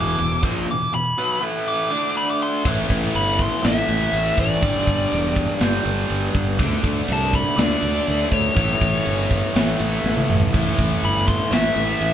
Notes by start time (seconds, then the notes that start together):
Already playing: E1 E2 B2 E3 D6
0.19 E1 E2 B2, crash
0.42 A#1 A#2 F3 A#3, kick
0.68 E2 B2 D6
0.93 E2 B2 B5
1.18 B2 F#3 B3
1.41 A2 E3 A3
1.68 D6
1.90 D3 A3 D4
2.17 B5
2.31 D6
2.43 C6
2.64 A1 A2 E3 A3, kick, crash
2.90 A1, kick, ride
3.15 G1 B5, ride
3.39 C6, kick, ride
3.62 A1 A2 E3 A3 E5, snare, ride
3.89 A1, ride
4.13 A1, ride
4.38 A1 D5, kick, ride
4.62 G1 G2 D3 G3, kick, ride
4.87 G1, kick, ride
5.12 E1, ride
5.36 kick, ride
5.59 G1 G2 D3 G3, snare, ride
5.86 G1, ride
6.10 G1, ride
6.35 G1, kick, ride
6.58 D2 D3 A3 D4, kick, ride
6.73 snare
6.84 D2, kick, ride
7.08 C2, ride
7.13 A5
7.33 B5, kick, ride
7.56 D2 D3 A3 D4 D5, snare, ride
7.82 D2, ride
8.07 D2, ride
8.31 D2 C#5, kick, ride
8.55 A1 A2 E3 A3, kick, ride
8.70 snare
8.81 A1, kick, ride
9.06 G1, ride
9.31 kick, ride
9.54 A1 A2 E3 A3, snare, ride
9.80 A1, ride
10.04 A1, snare
10.17 high tom
10.29 A1, mid tom
10.41 floor tom
10.53 A1 A2 E3 A3, kick, crash
10.78 A1, kick, ride
11.03 G1 B5, ride
11.27 C6, kick, ride
11.51 A1 A2 E3 A3 E5, snare, ride
11.76 A1, ride
12.01 A1, ride